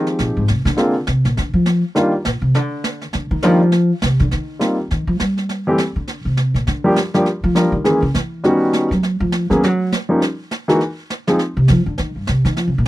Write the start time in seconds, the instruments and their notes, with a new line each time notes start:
Already playing: grand piano F3 G#3 C4 D#4 G4
0.07 snare
0.19 upright bass A#2, brush sweep, snare
0.37 upright bass G#2
0.48 upright bass C3, snare
0.65 upright bass D3, snare
0.77 grand piano D3 G#3 A#3 C4 F4, brush sweep, snare
1.07 upright bass C3, snare
1.25 upright bass A#2, snare
1.37 upright bass D3, brush sweep, snare
1.53 upright bass F3
1.66 snare
1.95 grand piano D#3 G3 A#3 D4 F4, brush sweep, snare
2.25 upright bass A#2, snare
2.42 upright bass C3
2.54 upright bass D3, brush sweep, snare
2.84 snare
3.01 snare
3.13 upright bass D3, brush sweep, snare
3.31 upright bass D#3
3.42 grand piano D#3 G3 A#3 D4 F4, upright bass F3, snare
3.72 brush sweep, snare
4.02 upright bass C3, snare
4.19 upright bass D3, snare
4.31 upright bass D#3, brush sweep, snare
4.59 grand piano D#3 G3 A#3 C4 F4, snare
4.91 upright bass D#3, brush sweep, snare
5.07 upright bass F3
5.20 upright bass G3, snare
5.37 snare
5.49 brush sweep, snare
5.67 grand piano E3 G3 A3 C4 G4
5.78 snare
5.96 upright bass D3
6.08 brush sweep, snare
6.25 upright bass C3
6.37 snare
6.54 upright bass A#2, snare
6.67 upright bass D3, brush sweep, snare
6.84 grand piano F3 G3 A#3 D4 G4
6.96 snare
7.14 grand piano F3 G3 A#3 D4 G4, snare
7.26 brush sweep, snare
7.44 upright bass F3
7.55 grand piano F3 G3 A#3 D4 A#4, snare
7.72 upright bass D#3
7.84 grand piano E3 G#3 A#3 C#4 G#4, brush sweep, snare
8.02 upright bass C#3
8.14 upright bass E3, snare
8.44 grand piano D#3 G3 B3 C#4 F#4, brush sweep, snare
8.73 snare
8.91 upright bass F#3, snare
9.03 brush sweep, snare
9.20 upright bass F3
9.32 snare
9.50 upright bass D#3, grand piano F#3 A#3 B3 C#4 G#4, snare
9.63 upright bass F#3, brush sweep, snare
9.92 snare
10.09 grand piano F3 G3 A#3 C#4 D#4
10.22 brush sweep, snare
10.51 snare
10.68 grand piano E3 G#3 A#3 D#4 F#4, snare
10.81 brush sweep, snare
11.10 snare
11.27 grand piano F3 G#3 C4 D#4 G#4, snare
11.39 brush sweep, snare
11.57 upright bass C3
11.68 upright bass F3, snare
11.86 upright bass D3
11.98 upright bass D#3, brush sweep, snare
12.16 upright bass G2
12.27 upright bass C3, snare
12.45 upright bass D#3, snare
12.57 upright bass F3, brush sweep, snare
12.67 upright bass C#3
12.78 upright bass A#2